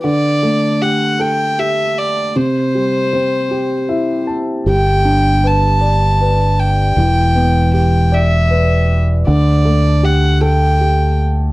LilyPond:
<<
  \new Staff \with { instrumentName = "Violin" } { \time 6/8 \key d \mixolydian \tempo 4. = 52 d''4 fis''8 g''8 e''8 d''8 | c''2~ c''8 r8 | g''4 a''4. g''8~ | g''4 g''8 e''4 r8 |
d''4 fis''8 g''4 r8 | }
  \new Staff \with { instrumentName = "Grand piano" } { \time 6/8 \key d \mixolydian << { r2. | r2 e''8 a''8 | r2. | r2. |
r2. | } \\ { d8 a8 g'8 a'8 g'4 | c8 g8 c'8 g'8 e'4 | g8 d'8 b'8 d''8 b'4 | e8 b8 g'8 d''8 b'4 |
d8 a8 g'8 a'8 g'4 | } >> }
  \new Staff \with { instrumentName = "Fingered electric bass" } { \clef bass \time 6/8 \key d \mixolydian r2. | r2. | g,,2. | e,,2. |
d,2. | }
>>